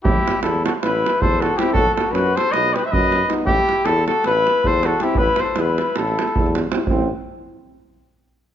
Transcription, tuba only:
\new Staff \with { instrumentName = "Tuba" } { \clef bass \time 9/8 \tempo 4. = 105 a,,8 r8 e,4 a,,4 e,4. | b,,8 r8 fis,4 b,,4 fis,4. | a,,8 r8 e,4 a,,4 e,4. | a,,8 r8 e,4 a,,4 e,4. |
a,,8 r1 | }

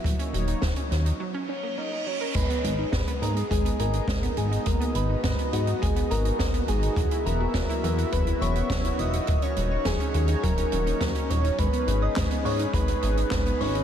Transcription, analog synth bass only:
\new Staff \with { instrumentName = "Analog synth bass" } { \clef bass \time 4/4 \key gis \minor \tempo 4 = 104 dis,,8 dis,,8 dis,,8 dis,8 r2 | gis,,8 gis,,8 gis,,8 gis,8 gis,,8 gis,,8 gis,,8 gis,,8 | gis,,8 gis,,8 gis,,8 gis,8 gis,,8 gis,,8 gis,,8 gis,,8 | e,,8 e,,8 e,,8 e,8 e,,8 e,,8 e,,8 e,,8 |
dis,,8 dis,,8 dis,,8 dis,8 dis,,8 dis,,8 dis,8 dis,,8 | gis,,8 gis,,8 gis,,8 gis,8 gis,,8 gis,,8 gis,,8 gis,,8 | }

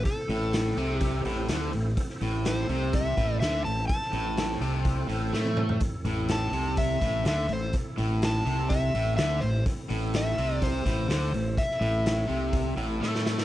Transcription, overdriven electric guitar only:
\new Staff \with { instrumentName = "Overdriven electric guitar" } { \clef bass \time 4/4 \key a \minor \tempo 4 = 125 r8 a,4 c4 a,8 d8 a,8 | r8 a,4 c4 a,8 d8 a,8 | r8 a,4 c4 a,8 a4 | r8 a,4 c4 a,8 d8 a,8 |
r8 a,4 c4 a,8 d8 a,8 | r8 a,4 c4 a,8 d8 a,8 | r8 a,4 c4 a,8 a4 | }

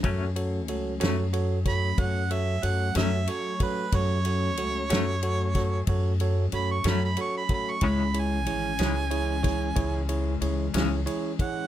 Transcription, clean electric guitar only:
\new Staff \with { instrumentName = "Clean electric guitar" } { \clef bass \time 12/8 \key fis \dorian \tempo 4. = 62 <fis, fis a cis'>8 r4 <fis, fis a cis'>8 r2 r8 <fis, fis a cis'>8 r4 | r4. <fis, fis a cis'>8 r2 r8 <fis, fis a cis'>8 r4 | <cis e gis cis'>8 r4 <cis e gis cis'>8 r2 r8 <cis e gis cis'>8 r4 | }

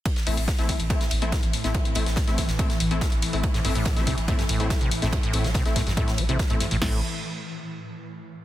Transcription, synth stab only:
\new Staff \with { instrumentName = "Synth stab" } { \time 4/4 \key a \minor \tempo 4 = 142 r8 <a c' e'>16 r8 <a c' e'>16 r8 <a c' e'>16 r8 <a c' e'>16 r8. <a c' e'>16~ | <a c' e'>8 <a c' e'>16 r8 <a c' e'>16 r8 <a c' e'>16 r8 <a c' e'>16 r8. <a c' e'>16~ | <a c' e'>8 <a c' e'>16 r8 <a c' e'>16 r8 <a c' e'>16 r8 <a c' e'>16 r8. <a c' e'>16~ | <a c' e'>8 <a c' e'>16 r8 <a c' e'>16 r8 <a c' e'>16 r8 <a c' e'>16 r16 <a c' e'>16 r8 |
<a c' e'>8 r2. r8 | }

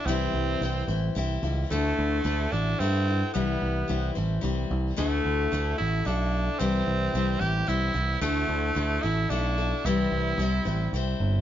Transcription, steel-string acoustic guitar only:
\new Staff \with { instrumentName = "Steel-string acoustic guitar" } { \time 3/4 \key c \lydian \tempo 4 = 110 <c e g c' e' c''>4 <g c' e' c''>8 <g c' e' c''>8 <g c' e' c''>8 <g c' e' c''>8 | <d a e' fis' a'>4 <a e' fis' a'>8 <e' fis' a'>8 <a e' fis' a'>8 <e' fis' a'>8 | <c e g e'>4 <g c' e' c''>8 <g c' e' c''>8 <g c' e' c''>4 | <d a e' fis' a'>4 <a e' fis' a'>4 <a e' fis' a'>4 |
<c e g c' e' c''>4 <g c' e' c''>8 <g c' e' c''>8 <g c' e' c''>8 <g c' c''>8 | <d a e' fis' a'>4 <a e' fis' a'>8 <e' fis' a'>8 <a e' fis' a'>8 <e' fis' a'>8 | <c e g c' e' c''>4 <g c' e' c''>8 <g c' e' c''>8 <g c' e' c''>4 | }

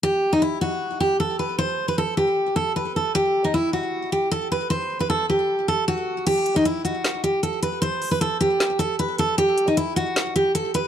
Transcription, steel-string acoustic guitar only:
\new Staff \with { instrumentName = "Steel-string acoustic guitar" } { \time 4/4 \key g \major \tempo 4 = 154 g'8. dis'16 e'8 fis'4 g'8 a'8 b'8 | c''8. b'16 a'8 g'4 a'8 b'8 a'8 | g'8. dis'16 e'8 fis'4 g'8 a'8 b'8 | c''8. b'16 a'8 g'4 a'8 fis'4 |
g'8. dis'16 e'8 fis'4 g'8 a'8 b'8 | c''8. b'16 a'8 g'4 a'8 b'8 a'8 | g'8. dis'16 e'8 fis'4 g'8 a'8 b'8 | }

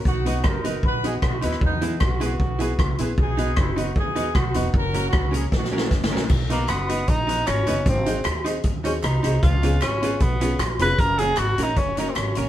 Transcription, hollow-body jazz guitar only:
\new Staff \with { instrumentName = "Hollow-body jazz guitar" } { \time 4/4 \key b \major \tempo 4 = 154 r8 <dis' fis' b'>8 r8 <dis' fis' b'>8 r8 <dis' fis' b'>8 r8 <dis' fis' b'>8 | r8 <e' gis' b'>8 r8 <e' gis' b'>8 r8 <e' gis' b'>8 r8 <e' gis' b'>8 | r8 <dis' fis' b'>8 r8 <dis' fis' b'>8 r8 <dis' fis' b'>8 r8 <dis' fis' b'>8 | r8 <cis' fis' ais'>8 r8 <cis' fis' ais'>8 r8 <cis' fis' ais'>8 r8 <cis' fis' ais'>8 |
r8 <dis' fis' b'>8 r8 <dis' fis' b'>8 r8 <dis' fis' b'>8 r8 <dis' fis' b'>8 | r8 <dis' fis' bis'>8 r8 <dis' fis' bis'>8 r8 <dis' fis' bis'>8 r8 <dis' fis' bis'>8 | r8 <cis' eis' b'>8 r8 <cis' eis' b'>8 r8 <cis' eis' b'>8 r8 <cis' eis' b'>8 | r8 <cis' fis' ais'>8 r8 <cis' fis' ais'>8 r8 <cis' fis' ais'>8 r8 <cis' fis' ais'>8 | }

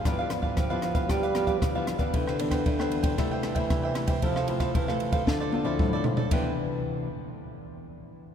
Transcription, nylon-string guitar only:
\new Staff \with { instrumentName = "Nylon-string guitar" } { \time 4/4 \key c \major \tempo 4 = 115 << { <f b e'>8 <f b e'>8 r16 <f b e'>8 <f b e'>8. <f b e'>8 r16 <f b e'>8 <e b d'>16~ | <e b d'>8 <e b d'>8 r16 <e b d'>8. <g a e'>8. <g a e'>8. <g a e'>16 r16 | <f a e'>16 r16 <f a e'>8 r16 <a e'>8. <f c' e'>8 r16 <f c' e'>8. <f c' e'>16 r16 | <c e b d'>8 r2. r8 | } \\ { g,4 d4 g,4 d4 | c4 g,4 c4 c4 | c4 c4 d4 a,4 | r1 | } >> }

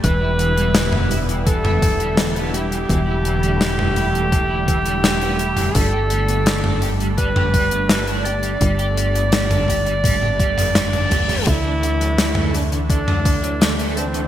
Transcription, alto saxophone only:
\new Staff \with { instrumentName = "Alto saxophone" } { \time 4/4 \key g \major \tempo 4 = 84 b'2 a'4. g'8~ | g'1 | a'2 b'4. d''8~ | d''1 |
e'2 d'4. c'8 | }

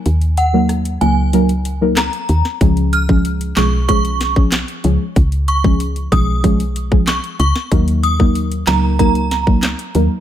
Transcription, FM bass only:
\new Staff \with { instrumentName = "FM bass" } { \clef bass \time 4/4 \key ees \minor \tempo 4 = 94 ees,4. des,4.~ des,16 r16 ees,16 r16 | des,4. ces,4.~ ces,16 r16 des,16 r16 | des,4. ces,4.~ ces,16 r16 des,16 r16 | ees,4. des,4.~ des,16 r16 ees,16 r16 | }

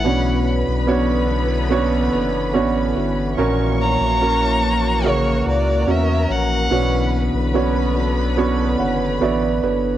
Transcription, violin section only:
\new Staff \with { instrumentName = "Violin section" } { \time 4/4 \key b \minor \tempo 4 = 72 <b' b''>1 | <cis'' cis'''>2~ <cis'' cis'''>8 <ais' ais''>4. | <b' b''>1 | }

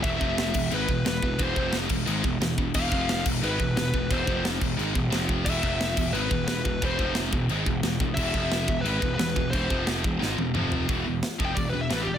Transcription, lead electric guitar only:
\new Staff \with { instrumentName = "Lead electric guitar" } { \time 4/4 \tempo 4 = 177 e''2 b'4 b'4 | c''4 r2. | f''4. r8 b'4 b'4 | c''4 r2. |
e''2 b'4 b'4 | c''4 r2. | e''2 b'4 b'4 | c''4 r2. |
r4 \tuplet 3/2 { r4 g''8 d''8 b'8 e''8 b'8 g'8 d''8 } | }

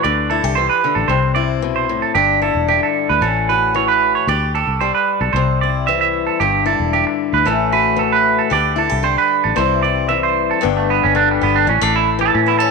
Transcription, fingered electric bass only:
\new Staff \with { instrumentName = "Fingered electric bass" } { \clef bass \time 4/4 \key g \major \tempo 4 = 113 d,8. c,8 r8 a,,16 c,2 | g,,8. e,,8 r8 d,16 a,,2 | d,8. c,8 r8 b,,16 c,2 | g,,8. e,,8 r8 d,16 a,,2 |
d,8. c,8 r8 a,,16 c,2 | g,,8. g,,8. g,,8 a,,16 a,,4 a,8. | }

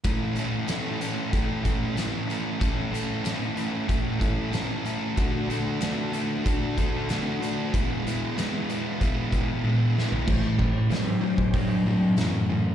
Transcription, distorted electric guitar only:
\new Staff \with { instrumentName = "Distorted electric guitar" } { \time 4/4 \key a \major \tempo 4 = 94 <a, e a cis' e' a'>8 <a, e a cis' e' a'>8 <a, e a cis' e' a'>8 <a, e a cis' e' a'>8 <a, e a cis' e' a'>8 <a, e a cis' e' a'>8 <a, e a cis' e' a'>8 <a, e a cis' e' a'>8 | <a, e a cis' e' a'>8 <a, e a cis' e' a'>8 <a, e a cis' e' a'>8 <a, e a cis' e' a'>8 <a, e a cis' e' a'>8 <a, e a cis' e' a'>8 <a, e a cis' e' a'>8 <a, e a cis' e' a'>8 | <d a d' fis' a'>8 <d a d' fis' a'>8 <d a d' fis' a'>8 <d a d' fis' a'>8 <d a d' fis' a'>8 <d a d' fis' a'>8 <d a d' fis' a'>8 <d a d' fis' a'>8 | <e gis b e'>8 <e gis b e'>8 <e gis b e'>8 <e gis b e'>8 <e gis b e'>8 <e gis b e'>8 <e gis b e'>8 <e gis b e'>8 |
<a, e>8 <a, e>8 <a, fis>8 <a, fis>8 <a, fis>8 <a, fis>8 <a, e>8 <a, e>8 | }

